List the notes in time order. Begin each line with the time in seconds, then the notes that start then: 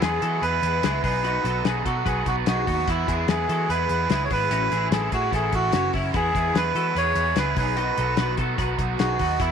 0.02 E2 E3 G#3 B3 E4 G#4 B4, snare, closed hi-hat
0.22 E3 G#3 B3 E4 F#4 A4, closed hi-hat
0.42 E2 E3 G#3 B3 E4 G#4 B4, closed hi-hat
0.63 E2 G#3 B3 E4, closed hi-hat
0.83 C#2 E3 G#3 B3 E4 G#4, snare, closed hi-hat
1.03 B1 F#3 B3 D#4 G#4 B4, kick, open hi-hat
1.24 B2 D#3 F#3 B3 D#4 F#4, closed hi-hat
1.44 B1 F#3 B3 D#4 F#4 A4, closed hi-hat
1.64 B1 B2 D#3 F#3 B3 D#4 F#4 G#4 B4, snare, closed hi-hat
1.85 B2 F#3 B3 D#4 F#4 A4, kick, closed hi-hat
2.05 B1 D#3 F#3 B3 D#4 F#4 G#4 B4, kick, closed hi-hat
2.25 B1 F#3 B3 D#4 F#4, kick, closed hi-hat
2.46 B1 B2 D#3 F#3 B3 D#4 F#4 G#4, snare, closed hi-hat
2.67 D#2 F#3 B3 D#4 F#4, kick, open hi-hat
2.87 E2 E3 G#3 B3 E4, kick, closed hi-hat
3.07 E2 G#3 B3 E4 G#4, kick, closed hi-hat
3.28 E2 E3 G#3 B3 E4 G#4 B4, snare, closed hi-hat
3.48 E3 G#3 B3 E4 F#4 A4, closed hi-hat
3.68 E2 E3 G#3 B3 E4 G#4 B4, closed hi-hat
3.89 E2 G#3 B3 E4, closed hi-hat
4.09 C#2 E3 G#3 B3 E4 G#4, snare, closed hi-hat
4.24 C#5
4.30 G#1 G#3 B3 E4 G#4 B4, kick, open hi-hat
4.50 A1 A2 E3 A3 C#4 E4 F#4, closed hi-hat
4.69 A1 C#4 E4 G#4, closed hi-hat
4.74 A3
4.91 A1 A2 E3 A3 C#4 E4 G#4 A4, snare, closed hi-hat
5.11 A2 A3 C#4 E4 F#4 G#4, kick, closed hi-hat
5.32 A1 E3 A3 C#4 E4 G#4 A4, kick, closed hi-hat
5.51 A1 A3 C#4 E4 F#4, kick, closed hi-hat
5.72 F#1 A2 E3 A3 C#4 E4 F#4, snare, closed hi-hat
5.92 F#1 A3 C#4 E4, kick, open hi-hat
6.12 E2 E3 G#3 B3 E4 G#4, kick, closed hi-hat
6.32 E2 G#3 B3 E4 G#4, kick, closed hi-hat
6.53 E2 E3 G#3 B3 E4 G#4 B4, snare, closed hi-hat
6.73 E3 G#3 B3 E4 F#4 A4, closed hi-hat
6.94 E2 E3 G#3 B3 E4 G#4 B4 C#5, closed hi-hat
7.14 E2 G#3 B3 E4, closed hi-hat
7.36 C#2 E3 G#3 B3 E4 G#4 B4, snare, closed hi-hat
7.55 B1 F#3 B3 D#4 G#4 B4, kick, open hi-hat
7.76 B2 D#3 F#3 B3 D#4 F#4, closed hi-hat
7.97 B1 F#3 B3 D#4 F#4 A4, closed hi-hat
8.17 B1 B2 D#3 F#3 B3 D#4 F#4 B4, snare, closed hi-hat
8.37 B2 F#3 B3 D#4 F#4 A4, kick, closed hi-hat
8.57 B1 D#3 F#3 B3 D#4 F#4 B4, kick, closed hi-hat
8.78 B1 F#3 B3 D#4, kick, closed hi-hat
8.98 B1 B2 D#3 F#3 B3 D#4 F#4 G#4, snare, closed hi-hat
9.18 D#2 F#3 B3 D#4 F#4, kick, open hi-hat
9.39 E2 E3 G#3 B3 E4, kick, closed hi-hat